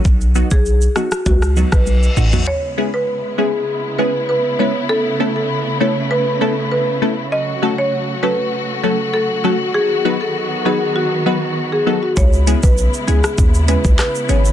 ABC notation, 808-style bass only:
X:1
M:4/4
L:1/16
Q:1/4=99
K:C#m
V:1 name="808-style bass" clef=bass
B,,,3 B,,,3 z2 C,,3 B,,,3 A,,,2 | z16 | z16 | z16 |
z16 | C,,3 B,,,2 z C,, z D,,3 C,, z2 G,,,2 |]